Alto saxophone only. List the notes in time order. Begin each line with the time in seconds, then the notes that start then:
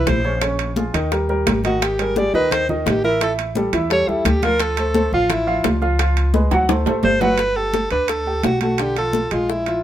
Already playing: B4
0.09 C5
1.66 F#4
1.83 G4
2.01 A#4
2.18 D5
2.35 B4
2.52 C5
2.69 D#4
2.88 G4
3.04 A#4
3.23 A4
3.92 C#5
4.08 E4
4.26 G4
4.44 A#4
4.62 A4
5.14 F4
5.31 E4
7.04 C5
7.21 B4
7.56 A4
7.92 B4
8.09 A4
8.44 F#4
8.62 F#4
8.81 G4
8.98 A4
9.33 F4
9.49 E4